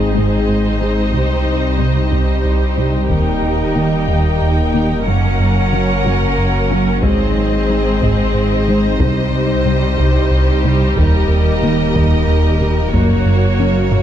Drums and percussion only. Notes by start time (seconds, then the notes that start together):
3.10 taiko
7.03 taiko
8.01 taiko
9.00 taiko
9.99 taiko
10.98 taiko
11.96 taiko
12.94 taiko
13.92 taiko low-mid